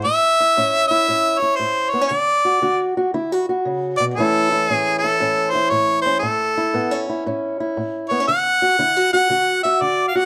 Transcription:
0.04 0.52 A2 medium
0.04 0.85 E5 loud
0.40 0.90 E4 medium
0.57 1.04 A2 medium
0.57 1.08 C#4 medium
0.87 1.41 E4 medium
0.87 1.40 E5 loud
1.08 1.55 A2 medium
1.08 1.93 C#4 medium
1.38 1.57 C#5 medium
1.42 2.10 E4 medium
1.55 1.92 C5 medium
1.60 2.07 A2 medium
1.90 2.01 B3 medium
1.90 2.08 C#5 medium
2.01 2.10 C#4 soft
2.08 2.58 D3 medium
2.08 2.90 D5 medium
2.45 2.61 F#4 medium
2.62 3.10 D3 medium
2.62 2.96 F#4 medium
2.97 3.14 F#4 medium
3.14 3.61 D3 medium
3.14 3.32 E4 medium
3.32 3.48 F#4 medium
3.49 4.15 F#4 medium
3.65 3.99 C#3 medium
3.97 4.17 B2 medium
3.97 4.05 D5 loud
4.14 4.65 A2 medium
4.14 4.71 A4 loud
4.18 6.21 E3 medium
4.18 6.77 A3 medium
4.18 4.70 C#4 medium
4.18 4.52 E4 medium
4.52 5.04 E4 medium
4.70 5.16 A2 medium
4.70 5.20 C#4 medium
4.70 4.96 G#4 loud
4.98 5.52 A4 medium
5.04 5.54 E4 medium
5.20 5.67 A2 medium
5.20 6.05 C#4 medium
5.51 5.71 C5 medium
5.55 6.56 E4 medium
5.70 6.19 A2 medium
5.70 6.01 C#5 loud
6.02 6.19 C5 medium
6.06 6.20 C#4 medium
6.19 6.70 A2 medium
6.19 7.02 A4 medium
6.58 7.08 E4 medium
6.74 7.21 A2 medium
6.74 6.91 B3 medium
6.91 7.25 C#4 medium
7.10 7.59 E4 medium
7.26 7.73 A2 medium
7.26 8.11 C#4 medium
7.60 8.28 E4 medium
7.77 8.24 A2 medium
8.09 8.20 B3 medium
8.09 8.25 C#5 medium
8.20 8.28 C#4 soft
8.28 8.75 D3 medium
8.28 9.08 F#5 loud
8.62 8.79 F#4 medium
8.79 9.26 D3 medium
8.79 8.96 E4 medium
8.96 9.12 F#4 medium
9.13 9.30 F#4 medium
9.13 9.60 F#5 loud
9.30 9.77 D3 medium
9.30 9.64 F#4 medium
9.63 10.14 F#4 medium
9.63 9.83 E5 medium
9.81 10.25 D3 medium
9.81 10.07 D5 medium
10.08 10.18 F5 medium
10.15 10.25 F#4 medium
10.15 10.25 F#5 loud

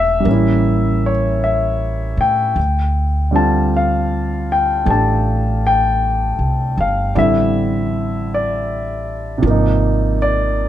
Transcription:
0.00 0.22 E1 medium
0.00 0.23 E3 soft
0.00 0.25 A3 soft
0.00 0.27 D4 soft
0.00 0.29 G4 medium
0.00 1.09 E5 medium
0.00 0.27 G5 medium
0.20 2.53 G3 soft
0.25 2.13 A1 medium
0.25 2.56 A#3 soft
0.25 2.57 C#4 soft
0.31 2.59 E4 soft
1.06 1.41 C#5 medium
1.44 2.15 E5 medium
2.17 2.54 A2 medium
2.17 3.37 G5 medium
2.56 4.82 D2 medium
3.31 7.14 D3 soft
3.31 7.14 G3 soft
3.31 7.15 C4 soft
3.36 7.17 F4 soft
3.36 3.70 A5 medium
3.77 4.46 F5 medium
4.52 4.90 G5 medium
4.85 6.34 A1 medium
4.85 7.14 A3 soft
4.85 7.15 D4 soft
4.85 7.16 G4 soft
4.90 5.60 A5 medium
5.67 6.82 G5 medium
6.39 6.74 C2 soft
6.77 7.13 G1 medium
6.77 7.15 F5 medium
7.15 9.39 A1 medium
7.15 9.43 D3 soft
7.15 9.43 G3 soft
7.15 9.44 C4 soft
7.15 9.44 E4 soft
7.15 8.35 E5 medium
8.34 10.16 D5 medium
9.38 10.69 C3 soft
9.42 10.69 G#1 medium
9.42 10.69 F3 soft
9.42 10.69 A#3 soft
9.50 10.69 D#4 soft
10.22 10.69 D5 medium

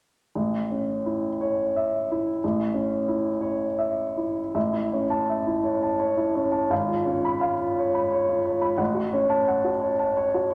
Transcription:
0.35 2.39 A1 soft
0.71 1.27 C#4 soft
1.06 1.62 E4 soft
1.41 1.96 C#5 soft
1.76 2.30 E5 soft
2.12 2.63 E4 soft
2.44 4.52 A1 soft
2.74 3.28 C#4 soft
3.08 3.65 E4 soft
3.41 4.01 C#5 soft
3.79 4.40 E5 soft
4.17 4.56 E4 soft
4.55 6.66 A1 soft
4.55 4.85 E5 soft
4.73 5.03 E4 soft
4.92 5.51 C#4 soft
4.92 5.22 C#5 soft
5.10 5.39 A5 soft
5.29 5.58 E5 soft
5.47 5.76 E4 soft
5.64 5.93 C#5 soft
5.83 6.11 A5 soft
6.00 6.28 C#5 soft
6.17 6.46 E4 soft
6.35 6.71 C#4 soft
6.35 6.64 C#5 soft
6.52 6.70 A5 soft
6.70 8.76 G#1 soft
6.70 6.99 F5 soft
6.88 7.17 F4 soft
7.05 7.63 C#4 soft
7.05 7.35 C#5 soft
7.25 7.54 B5 soft
7.41 7.70 F5 soft
7.59 7.88 F4 soft
7.79 8.06 C#5 soft
7.95 8.22 B5 soft
8.12 8.39 C#5 soft
8.29 8.56 F4 soft
8.46 8.73 C#5 soft
8.61 8.79 B5 soft
8.78 10.54 A1 soft
8.78 9.06 F#5 soft
8.95 9.23 F#4 soft
9.13 9.68 C#4 soft
9.13 9.41 C#5 soft
9.30 9.58 A5 medium
9.48 9.75 F#5 soft
9.64 9.92 F#4 soft
9.81 10.10 C#5 soft
9.99 10.27 A5 soft
10.17 10.45 C#5 soft
10.34 10.54 F#4 soft
10.50 10.54 C#5 soft

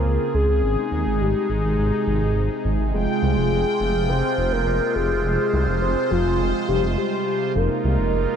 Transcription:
0.00 0.61 C#3 medium
0.00 0.61 C4 medium
0.00 0.61 F4 medium
0.00 2.90 G#4 medium
0.00 0.36 A#4 loud
0.05 0.19 C#2 loud
0.34 0.47 C#2 loud
0.34 1.22 G#4 loud
0.49 0.62 C#2 medium
0.63 0.76 G#1 loud
0.63 7.51 C3 medium
0.63 2.92 G#3 medium
0.63 2.92 D#4 medium
0.92 1.05 D#2 medium
1.06 1.20 G#1 medium
1.21 1.34 G#1 loud
1.21 1.51 G4 medium
1.50 1.63 G#1 medium
1.50 2.65 G#4 medium
1.64 1.77 G#1 medium
1.79 1.92 G#1 loud
2.07 2.20 G#1 medium
2.22 2.35 G#1 medium
2.36 2.49 G#1 loud
2.65 2.78 G#1 loud
2.79 2.93 G#1 medium
2.94 3.07 F1 loud
2.94 7.51 G#3 medium
2.94 7.51 F4 medium
2.94 4.11 G#4 loud
2.94 5.22 G5 medium
3.23 3.36 C2 loud
3.37 3.50 F1 medium
3.52 3.65 F1 loud
3.80 3.94 F1 medium
3.95 4.08 F1 medium
4.09 4.22 F1 loud
4.09 4.54 C5 loud
4.38 4.51 F1 medium
4.52 4.66 F1 medium
4.52 4.97 A#4 loud
4.67 4.80 F1 loud
4.95 5.09 F1 loud
4.95 5.81 G#4 loud
5.10 5.23 F1 medium
5.25 5.38 F1 loud
5.25 7.53 C5 medium
5.53 5.67 C2 loud
5.68 5.81 F1 medium
5.82 5.95 F1 loud
5.82 6.12 C5 loud
6.11 6.24 F1 medium
6.11 6.68 F4 medium
6.26 6.39 F1 medium
6.40 6.53 F1 loud
6.69 6.82 F1 medium
6.69 6.82 G4 medium
6.83 6.96 F1 medium
6.98 7.57 G4 medium
7.55 7.69 F1 loud
7.55 8.36 C3 medium
7.55 8.36 G#3 medium
7.55 8.36 D#4 medium
7.55 8.36 F4 medium
7.55 8.36 A#4 loud
7.84 7.97 C2 loud
7.99 8.12 F1 medium
8.13 8.26 F1 loud

